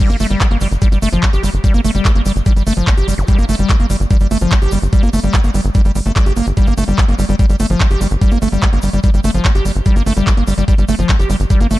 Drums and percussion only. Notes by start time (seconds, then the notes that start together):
0.10 closed hi-hat, shaker
0.20 open hi-hat, shaker
0.30 shaker
0.40 kick, clap, closed hi-hat, shaker
0.51 closed hi-hat
0.61 open hi-hat, shaker
0.71 closed hi-hat, shaker
0.82 kick, closed hi-hat, shaker
0.92 closed hi-hat, shaker
1.02 open hi-hat, shaker
1.12 closed hi-hat, shaker
1.23 kick, clap, closed hi-hat, shaker
1.33 closed hi-hat, shaker
1.43 open hi-hat, shaker
1.54 closed hi-hat, shaker
1.64 kick, closed hi-hat, shaker
1.74 closed hi-hat, shaker
1.84 open hi-hat, shaker
1.95 closed hi-hat, shaker
2.05 kick, clap, closed hi-hat, shaker
2.15 closed hi-hat
2.26 open hi-hat, shaker
2.36 closed hi-hat, shaker
2.46 kick, closed hi-hat, shaker
2.56 closed hi-hat, shaker
2.67 open hi-hat, shaker
2.77 shaker
2.87 kick, clap, closed hi-hat, shaker
2.98 closed hi-hat, shaker
3.08 open hi-hat, shaker
3.18 closed hi-hat, shaker
3.28 kick, closed hi-hat, shaker
3.38 closed hi-hat, shaker
3.49 open hi-hat, shaker
3.59 closed hi-hat, shaker
3.69 kick, clap, closed hi-hat, shaker
3.80 closed hi-hat
3.90 open hi-hat, shaker
4.00 closed hi-hat, shaker
4.10 kick, closed hi-hat, shaker
4.20 closed hi-hat, shaker
4.31 open hi-hat, shaker
4.41 closed hi-hat, shaker
4.51 kick, clap, closed hi-hat, shaker
4.62 closed hi-hat, shaker
4.71 open hi-hat, shaker
4.82 closed hi-hat, shaker
4.93 kick, closed hi-hat, shaker
5.03 closed hi-hat, shaker
5.13 open hi-hat, shaker
5.23 closed hi-hat, shaker
5.33 kick, clap, closed hi-hat, shaker
5.44 closed hi-hat, shaker
5.54 open hi-hat, shaker
5.64 closed hi-hat, shaker
5.74 kick, closed hi-hat, shaker
5.85 closed hi-hat, shaker
5.95 open hi-hat, shaker
6.05 closed hi-hat, shaker
6.16 kick, clap, closed hi-hat, shaker
6.26 closed hi-hat, shaker
6.36 open hi-hat, shaker
6.46 closed hi-hat, shaker
6.57 kick, closed hi-hat, shaker
6.67 closed hi-hat, shaker
6.78 open hi-hat, shaker
6.88 closed hi-hat, shaker
6.98 kick, clap, closed hi-hat, shaker
7.08 closed hi-hat
7.19 open hi-hat, shaker
7.29 closed hi-hat, shaker
7.39 kick, closed hi-hat, shaker
7.50 closed hi-hat, shaker
7.60 open hi-hat, shaker
7.70 closed hi-hat, shaker
7.80 kick, clap, closed hi-hat, shaker
7.90 closed hi-hat, shaker
8.01 open hi-hat, shaker
8.11 closed hi-hat, shaker
8.21 kick, closed hi-hat, shaker
8.31 closed hi-hat, shaker
8.42 open hi-hat, shaker
8.52 closed hi-hat, shaker
8.62 kick, clap, closed hi-hat, shaker
8.73 closed hi-hat
8.82 open hi-hat, shaker
8.93 closed hi-hat, shaker
9.03 kick, closed hi-hat, shaker
9.14 closed hi-hat, shaker
9.24 open hi-hat, shaker
9.34 closed hi-hat, shaker
9.45 kick, clap, closed hi-hat, shaker
9.55 closed hi-hat, shaker
9.65 open hi-hat, shaker
9.75 closed hi-hat, shaker
9.86 kick, closed hi-hat, shaker
9.96 closed hi-hat, shaker
10.06 open hi-hat, shaker
10.17 closed hi-hat, shaker
10.27 kick, clap, closed hi-hat, shaker
10.37 closed hi-hat
10.47 open hi-hat, shaker
10.58 closed hi-hat, shaker
10.68 kick, closed hi-hat, shaker
10.78 closed hi-hat, shaker
10.88 open hi-hat, shaker
10.99 closed hi-hat, shaker
11.09 kick, clap, closed hi-hat, shaker
11.19 closed hi-hat, shaker
11.30 open hi-hat, shaker
11.40 closed hi-hat, shaker
11.50 kick, closed hi-hat, shaker
11.61 closed hi-hat, shaker
11.71 open hi-hat, shaker